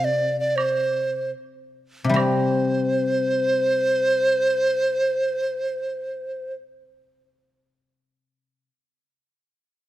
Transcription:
Already playing: C3
0.04 D5
0.40 D5
0.56 C5, high woodblock
2.04 C3
2.09 G3
2.14 C4 C5, high woodblock

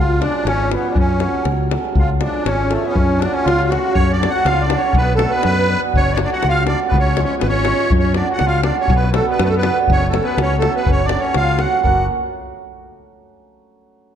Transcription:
Already playing: C#2 F5
0.00 F4
0.11 davul high
0.18 C#3 F3 G#3 C#4 D4 D5, davul high
0.35 davul high
0.45 G#1 C#4 C#5, davul high
0.69 C#3 F3 G#3 C#4 B4, davul high
0.76 B3
0.85 davul high
0.90 D4 D5
0.95 F#2 C#5, davul low
1.00 C#4
1.09 davul high
1.20 C#3 F#3 A3 C#4, davul high
1.35 davul high
1.45 C#2, davul high
1.71 C#3 F#3 A3 C#4, davul high
1.85 davul high
1.95 C#2 F4 F5, davul low
2.08 davul high
2.19 C#3 F3 G#3 C#4 D5, davul high
2.24 D4
2.34 davul high
2.45 G#1 C#4 C#5, davul high
2.71 C#3 F3 G#3 A3 C#4 A4, davul high
2.85 B3 C#4 B4, davul high
2.90 B4 C#5
2.95 F#2, davul low
2.99 C#5
3.12 davul high
3.18 C#3 F#3 D4
3.22 A3 C#4 D5, davul high
3.33 C#4 C#5
3.44 C#2 F4 F5, davul high
3.62 davul high
3.69 C#3 F#3 A3 C#4 F#4 F#5, davul high
3.87 davul high
3.94 F#2 C#5, davul low
3.99 C#4
4.12 D5, davul high
4.17 F#3 A3 D4 F#4
4.21 C#4, davul high
4.29 F#5
4.34 F#4
4.45 C#2 F5, davul high
4.49 F4
4.61 D5
4.68 F#3 D4, davul high
4.72 A3 C#4 F#4
4.77 C#5
4.84 C#4
4.93 B1, davul low
4.97 B3 B4
5.08 davul high
5.15 A3 A4
5.19 F#3 B3 D4 F#4, davul high
5.30 B4
5.34 B3
5.43 F#2 B4, davul high
5.48 B3
5.68 F#3 B3 D4 F#4
5.94 F#1 C#5, davul low
5.99 C#4
6.08 davul high
6.13 D4 C#5 D5
6.17 F#3 A3 C#4, davul high
6.22 F#4 D5
6.26 D4
6.32 F#4 F#5
6.43 C#2, davul high
6.47 F4 F5
6.65 F#3 A3 C#4 D4 D5, davul high
6.69 F#4
6.88 B3 B4
6.92 C#2, davul low
7.00 C#4 C#5
7.06 davul high
7.17 F3 G#3 C#4 F4, davul high
7.24 C#4 C#5
7.30 davul high
7.39 G#1 B3 B4, davul high
7.48 C#4 C#5
7.54 davul high
7.65 F3 G#3 C#4 F4, davul high
7.80 davul high
7.90 F#2, davul low
7.99 C#4 C#5
8.04 davul high
8.14 F#3 A3 C#4 D4 F#4 D5, davul high
8.29 F#4
8.33 F#5
8.39 C#2, davul high
8.45 F4 F5
8.63 F#3 A3 C#4 D4 D5, davul high
8.68 F#4
8.80 C#4 C#5
8.88 B1, davul low
8.96 B3 B4
9.02 davul high
9.11 F#3 A3 B3 D4 A4, davul high
9.15 F#4
9.27 B3
9.31 B4
9.39 F#2 B3, davul high
9.44 A3 B4
9.49 A4
9.55 B3 B4
9.62 F#3 B3 D4 F#4, davul high
9.88 F#1, davul low
9.92 C#4 C#5
10.02 davul high
10.09 A3 A4
10.13 F#3 A3 C#4 F#4, davul high
10.23 B3 B4
10.37 C#2 C#4, davul high
10.42 C#5
10.58 A3 A4, davul high
10.63 F#3 A3 C#4 F#4
10.75 B3 B4
10.86 F#1 C#4, davul low
10.92 C#5
11.00 davul high
11.05 D4 D5
11.09 F#3 A3 C#4 F#4, davul high
11.20 C#4 C#5
11.25 davul high
11.34 C#2 F4 F5, davul high
11.49 davul high
11.57 F#3 A3 C#4 F#4 F#5, davul high
11.73 davul high
11.82 F#1 F#3 A#3 C#4 F#4 F#5, davul low

